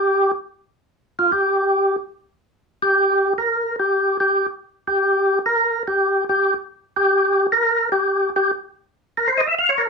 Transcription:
tonewheel organ
Already playing: G4
1.19 F4
1.32 G4
2.82 G4
3.38 A#4
3.79 G4
4.20 G4
4.87 G4
5.46 A#4
5.88 G4
6.29 G4
6.96 G4
7.52 A#4
7.92 G4
8.36 G4
9.17 A#4
9.28 C5
9.38 D#5
9.47 E5
9.59 F5
9.69 C#5
9.78 A#4

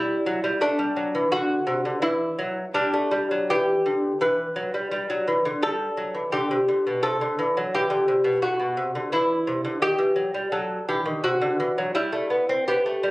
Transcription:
lute
Already playing: G3 E4
0.26 F#3
0.44 G3
0.61 A3 D4
0.79 G3
0.96 F#3
1.15 E3
1.32 D3 F#4
1.67 C3
1.85 D3
2.02 E3 E4
2.39 F#3
2.74 G3 D4
2.93 A3
3.11 G3
3.31 F#3
3.50 E3 G4
3.86 D3
4.21 E3 B4
4.56 F#3
4.74 G3
4.91 G3
5.10 F#3
5.28 E3
5.45 D3
5.63 G3 A4
5.97 F#3
6.15 E3
6.32 D3 G4
6.51 C3
6.68 D3
6.87 B2
7.03 C3 A4
7.21 D3
7.39 E3
7.57 F#3
7.75 E3 G4
7.90 D3
8.08 C3
8.24 B2
8.42 A2 F#4
8.60 B2
8.77 C3
8.95 D3
9.12 E3 E4
9.47 C3
9.65 D3
9.82 D#3 G4
9.98 E3
10.16 F#3
10.34 G3
10.52 F#3 A4
10.89 E3 G4
11.06 D#3
11.24 C3 F#4
11.42 D3
11.60 E3
11.78 F#3
11.95 G3 E4
12.12 A3
12.30 B3
12.49 C4
12.68 B3 G4
12.86 A3
13.03 G3

